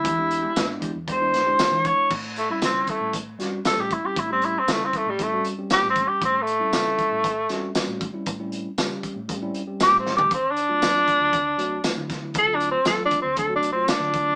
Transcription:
<<
  \new Staff \with { instrumentName = "Clean electric guitar" } { \time 4/4 \key d \major \tempo 4 = 117 <e gis d' g'>16 r8 <gis d' g'>16 r8 <e gis d' g'>16 r16 <e gis d' g'>16 r8 <gis d' g'>16 <e gis d' g'>16 r8. | r1 | r1 | r1 |
r1 | r1 | r1 | }
  \new Staff \with { instrumentName = "Tenor saxophone" } { \time 4/4 \key d \major e'4. r8 c''4. cis''8 | r8 a16 e'16 bis8 a8 r4 a'16 g'16 e'16 g'16 | e'16 bis16 e'16 bis16 a16 bis16 a16 g16 a8 r8 \tuplet 3/2 { g'8 bis8 g'8 } | \tuplet 3/2 { bis8 a4~ } a2~ a16 r8. |
r2. \tuplet 3/2 { g'8 bis8 g'8 } | \tuplet 3/2 { c'8 d'4~ } d'2~ d'16 r8. | \tuplet 3/2 { a'8 d'8 c'8 a'8 d'8 c'8 a'8 d'8 c'8 } d'4 | }
  \new Staff \with { instrumentName = "Tine electric piano" } { \time 4/4 \key d \major r16 <gis b d' g'>8 r16 <gis b d' e'>8. r16 <gis b d' g'>16 <gis b d' e'>8 <b, gis d' e'>4~ <b, gis d' e'>16 | r8. <g bis cis' e'>4~ <g bis cis' e'>16 r8 <g bis cis' fis'>8 <g bis cis' g'>8 r16 <g bis cis' e'>16~ | <g bis cis' e'>16 <g bis cis' g'>8 r16 <g bis cis' e'>8. r16 <g bis cis' e'>16 <g bis cis' fis'>8 <g bis cis' g'>4~ <g bis cis' g'>16~ | <g bis cis' g'>16 r8 <g bis cis' e'>4~ <g bis cis' e'>16 r8 <g bis cis' fis'>8 <g bis cis' fis'>8 r16 <g bis cis' e'>16~ |
<g bis cis' e'>16 <g bis cis' e'>8 r16 <g bis cis' g'>8. r16 <g bis cis' g'>16 <g bis cis' e'>8 <g bis cis' g'>4~ <g bis cis' g'>16 | r8. <fis a c' eis'>4~ <fis a c' eis'>16 r8 <fis a c' fis'>8 <fis a c' e'>8 r16 <fis a c' e'>16~ | <fis a c' e'>16 <fis a c' eis'>8 r16 <fis a c' eis'>8. r16 <fis a c' d'>16 <fis a c' fis'>8 <fis a c' eis'>4~ <fis a c' eis'>16 | }
  \new Staff \with { instrumentName = "Fingered electric bass" } { \clef bass \time 4/4 \key d \major e,4 gis,8 r16 e,8. d,8 r16 e8 r16 | a,4 cis8 r16 a,8. g,8 r16 a,8 r16 | a,4 cis8 r16 a,8. g,8 r16 a,8 r16 | a,4 cis8 r16 a,8. g,8 r16 a,8 r16 |
a,4 cis8 r16 a,8. g,8 r16 a,8. | d,4 fis,8 r16 d,8. c,8 r16 d8. | d,4 fis,8 r16 d,8. c,8 r16 d8. | }
  \new DrumStaff \with { instrumentName = "Drums" } \drummode { \time 4/4 <hh bd>8 hh8 <hh sn tamb>8 <hh bd>8 <hh bd>8 <hh sn>8 <hh sn tamb>8 <hh bd>8 | <cymc bd>8 hh8 <hh sn tamb>8 <hh bd>8 <hh bd>8 <hh sn>8 <hh sn tamb>8 <hh bd>8 | <hh bd>8 hh8 <hh sn tamb>8 <hh bd>8 <hh bd>8 hh8 <hh sn tamb>8 <hh bd>8 | <hh bd>8 hh8 <hh sn tamb>8 <hh bd>8 <hh bd>8 <hh sn>8 <hh sn tamb>8 <hh bd>8 |
<hh bd>8 hh8 <hh sn tamb>8 <hh bd>8 <hh bd>8 hh8 <hh sn tamb>8 sn16 tomfh16 | <hh bd>8 hh8 <hh sn tamb>8 <hh bd>8 <hh bd>8 hh8 <hh sn tamb>8 <hh bd sn>8 | <hh bd>8 hh8 <hh sn tamb>8 <hh bd>8 <hh bd>8 hh8 <hh sn tamb>8 <hh bd>8 | }
>>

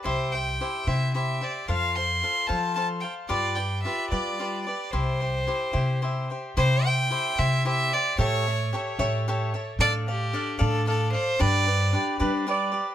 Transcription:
<<
  \new Staff \with { instrumentName = "Violin" } { \time 6/8 \key c \major \tempo 4. = 74 c''8 g''4 e''8 e''8 d''8 | f''8 c'''4 a''8 a''8 g''8 | d''8 g''8 e''8 d''4 d''8 | c''2~ c''8 r8 |
c''8 g''4 e''8 e''8 d''8 | cis''4 r2 | d''8 g'4 a'8 a'8 c''8 | d''4 r2 | }
  \new Staff \with { instrumentName = "Cavaquinho" } { \time 6/8 \key c \major <e' g' c'' e''>8 <g' c'' e''>8 <e' g' c'' e''>8 <e' g' c'' e''>8 <e' g' c'' e''>8 <g' c'' e''>8 | <f' a' c'' f''>8 <a' c'' f''>8 <f' a' c'' f''>8 <f' a' c'' f''>8 <f' a' c'' f''>8 <a' c'' f''>8 | <f' g' b' d''>8 <g' b' d''>8 <f' g' b' d''>8 <f' g' b' d''>8 <f' g' b' d''>8 <g' b' d''>8 | <e' g' c'' e''>8 <g' c'' e''>8 <e' g' c'' e''>8 <e' g' c'' e''>8 <e' g' c'' e''>8 <g' c'' e''>8 |
<e' g' c'' e''>8 <g' c'' e''>8 <e' g' c'' e''>8 <e' g' c'' e''>8 <e' g' c'' e''>8 <g' c'' e''>8 | <g' a' cis'' e''>8 <a' cis'' e''>8 <g' a' cis'' e''>8 <g' a' cis'' e''>8 <g' a' cis'' e''>8 <a' cis'' e''>8 | <d' a' d'' f''>8 <a' d'' f''>8 <d' a' d'' f''>8 <d' a' d'' f''>8 <d' a' d'' f''>8 <a' d'' f''>8 | <d' g' b' d''>8 <g' b' d''>8 <d' g' b' d''>8 <d' g' b' d''>8 <d' g' b' d''>8 <g' b' d''>8 | }
  \new Staff \with { instrumentName = "Trumpet" } { \time 6/8 \key c \major r2. | r2. | r2. | r2. |
r2. | r2. | r2. | r4 g'8 b'8 d''8. r16 | }
  \new Staff \with { instrumentName = "Upright bass" } { \clef bass \time 6/8 \key c \major c,4. c4. | f,4. f4. | g,4. g4. | c,4. c4. |
c4. c4. | a,4. a,4. | a,4. a,4. | g,4. g4. | }
>>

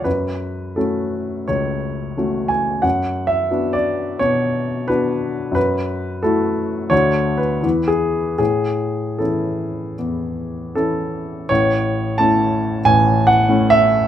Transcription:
<<
  \new Staff \with { instrumentName = "Grand piano" } { \time 4/4 \key b \dorian \tempo 4 = 86 b'4 a'4 cis''4. gis''8 | \tuplet 3/2 { fis''4 e''8~ e''8 d''4 } cis''4 b'4 | \key a \major b'4 a'4 \tuplet 3/2 { cis''4 b'8~ b'8 gis'4 } | gis'4 a'2 a'4 |
cis''4 a''4 \tuplet 3/2 { gis''4 fis''8~ fis''8 e''4 } | }
  \new Staff \with { instrumentName = "Grand piano" } { \time 4/4 \key b \dorian fis,4 <a cis' fis'>4 cis,4 <a cis' fis'>4 | fis,4 <b d' fis'>4 b,4 <b d' fis'>4 | \key a \major fis,4 <a e' fis'>4 <d, a d' fis'>4 <e, e b e'>4 | a,4 <e cis' e'>4 e,4 <e cis' e'>4 |
<a,, a,>4 <a cis' e'>4 <a,, a,>4 <a cis' e'>4 | }
>>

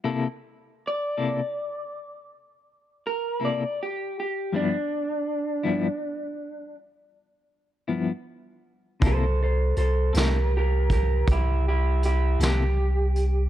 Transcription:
<<
  \new Staff \with { instrumentName = "Clean electric guitar" } { \time 12/8 \key c \major \tempo 4. = 53 r4 d''2. bes'8 d''8 g'8 g'8 | d'2. r2. | <a' c''>8 <a' c''>8 <a' c''>8 <g' bes'>8 <g' bes'>8 <g' bes'>8 <e' g'>8 <e' g'>8 <e' g'>8 g'4. | }
  \new Staff \with { instrumentName = "Clean electric guitar" } { \time 12/8 \key c \major <c bes e' a'>8 r4 <c bes e' a'>8 r2 r8 <c bes e' a'>8 r4 | <g, f b e'>8 r4 <g, f b e'>8 r2 r8 <g, f b e'>8 r4 | <c bes e' a'>8 r4 <c bes e' a'>8 r2 r8 <c bes e' a'>8 r4 | }
  \new Staff \with { instrumentName = "Sub bass" } { \clef bass \time 12/8 \key c \major r1. | r1. | c,4 c,8 c,4. c,4. c,4. | }
  \new DrumStaff \with { instrumentName = "Drums" } \drummode { \time 12/8 r4. r4. r4. r4. | r4. r4. r4. r4. | <hh bd>4 hh8 <hh sn>4 <hh bd>8 <hh bd>4 hh8 <hh sn>4 hh8 | }
>>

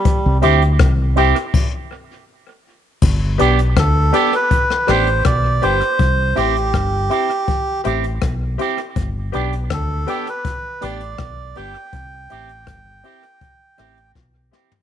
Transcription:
<<
  \new Staff \with { instrumentName = "Upright piano" } { \time 4/4 \key g \major \tempo 4 = 81 r8 <g' c'' e'' g''>16 r8. <g' c'' e'' g''>16 r2 r16 | r8 <g' b' d'' g''>16 r8. <g' b' d'' g''>16 r8. <g' b' d'' g''>16 r8. <g' b' d'' g''>16 r16 | r8 <g' c'' e'' g''>16 r8. <g' c'' e'' g''>16 r8. <g' c'' e'' g''>16 r8. <g' c'' e'' g''>16 r16 | r8 <g' b' d'' g''>16 r8. <g' b' d'' g''>16 r8. <g' b' d'' g''>16 r8. <g' b' d'' g''>16 r16 |
r8 <g' c'' e'' g''>16 r8. <g' c'' e'' g''>16 r8. <g' c'' e'' g''>16 r8. <g' c'' e'' g''>16 r16 | }
  \new Staff \with { instrumentName = "Melodica" } { \time 4/4 \key g \major g8 r2. r8 | r4 a'8. b'8. c''8 d''8 c''8~ | c''8 g'2 r4. | r4 a'8. b'8. d''4 g''8~ |
g''2. r4 | }
  \new Staff \with { instrumentName = "Clean electric guitar" } { \time 4/4 \key g \major r8 <c' e' g'>16 r8. <c' e' g'>16 r2 r16 | r8 <b d' g'>16 r8. <b d' g'>16 r8. <b d' g'>16 r8. <b d' g'>16 r16 | r8 <c' e' g'>16 r8. <c' e' g'>16 r8. <c' e' g'>16 r8. <c' e' g'>16 r16 | r8 <b d' g'>16 r8. <b d' g'>16 r8. <b d' g'>16 r8. <b d' g'>16 r16 |
r8 <c' e' g'>16 r8. <c' e' g'>16 r8. <c' e' g'>16 r8. <c' e' g'>16 r16 | }
  \new Staff \with { instrumentName = "Fingered electric bass" } { \clef bass \time 4/4 \key g \major r16 c,16 d,8 c,8. r2 r16 | g,,8 b,,8 d,8 r4 a,,8 b,,8 g,,16 r16 | c,8 a,,8 g,,8 r4 a,,8 b,,8 r8 | g,,8 b,,8 d,8 r4 a,,8 b,,8 g,,16 r16 |
c,8 a,,8 g,,8 r4 a,,8 b,,8 r8 | }
  \new DrumStaff \with { instrumentName = "Drums" } \drummode { \time 4/4 <hh bd>8 hh16 hh16 <hh bd ss>8 hh16 hh16 <cymc bd>4 r4 | <cymc bd>8 hh16 hh16 <hh bd ss>8 hh16 hh16 <hh bd>16 ss16 <hh ss>16 hh16 <hh bd ss>8 hh16 hh16 | <hh bd>8 hh16 hh16 <hh bd ss>8 hh16 hh16 <hh bd>8 hh16 hh16 <hh bd ss>8 hh16 hh16 | <hh bd>8 hh16 hh16 <hh bd ss>8 hh16 hh16 <hh bd>8 hh16 hh16 <hh bd ss>8 hh16 hh16 |
<hh bd>8 hh16 hh16 <hh bd ss>8 hh16 hh16 <hh bd>8 <hh ss>16 hh16 <bd sn>8 sn16 tomfh16 | }
>>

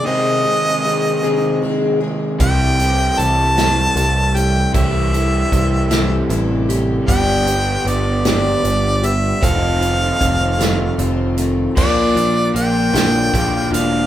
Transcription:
<<
  \new Staff \with { instrumentName = "Harmonica" } { \time 6/8 \key c \major \tempo 4. = 51 ees''2 r4 | g''4 a''4. g''8 | e''2 r4 | g''4 d''8 d''4 e''8 |
f''2 r4 | \key bes \lydian d''4 g''4. f''8 | }
  \new Staff \with { instrumentName = "Twelve-string acoustic guitar" } { \time 6/8 \key c \major <c ees aes c' aes'>8 <aes c' aes'>8 <ees aes c' aes'>8 <c ees aes c' aes'>8 <ees aes c' aes'>8 <aes c' aes'>8 | <c e a e' g'>8 <a e' g'>8 <e a e' g'>8 <c e a e' g'>8 <e a e' g'>8 <a e' g'>8 | <c e a e' g'>8 <a e' g'>8 <e a e' g'>8 <c e a e' g'>8 <e a e' g'>8 <a e' g'>8 | <g, d g b d' g'>8 <g b d' g'>8 <g b d' g'>8 <g, d g b d' g'>8 <g b d' g'>8 <g b d' g'>8 |
<f, c ees a c' f'>8 <ees a c' f'>8 <ees a c' f'>8 <f, c ees a c' f'>8 <ees a c' f'>8 <ees a c' f'>8 | \key bes \lydian <bes, f bes d' f'>8 <bes d' f'>8 <f bes d' f'>8 <bes, f bes d' f'>8 <f bes d' f'>8 <bes d' f'>8 | }
  \new Staff \with { instrumentName = "Overdriven electric guitar" } { \time 6/8 \key c \major <c ees aes c' aes'>2. | <c e g c' g'>2. | <c e g c' g'>2. | <g, d g b d' g'>2. |
<f c' ees' a'>2. | \key bes \lydian bes,4 bes8 d8 bes8 d'8 | }
  \new Staff \with { instrumentName = "Picked electric bass" } { \clef bass \time 6/8 \key c \major r2. | c,4 c,4 c,4 | c,4 c,4 a,,4 | g,,4 g,,4 g,,4 |
f,,4 f,,4 f,,4 | \key bes \lydian bes,,8 bes,,8 bes,,8 bes,,8 bes,,8 e,,8 | }
  \new DrumStaff \with { instrumentName = "Drums" } \drummode { \time 6/8 r4. r4. | <hh bd>8 hh8 hh8 <hh sn>8 hh8 hh8 | <hh bd>8 hh8 <hh bd>8 <hh sn>8 hh8 hh8 | <hh bd>8 hh8 hh8 <hh sn>8 hh8 hh8 |
<hh bd>8 hh8 <hh bd>8 <hh sn>8 hh8 hh8 | <cymc bd>8 hh8 hh8 <hh sn>8 <hh bd>8 hh8 | }
>>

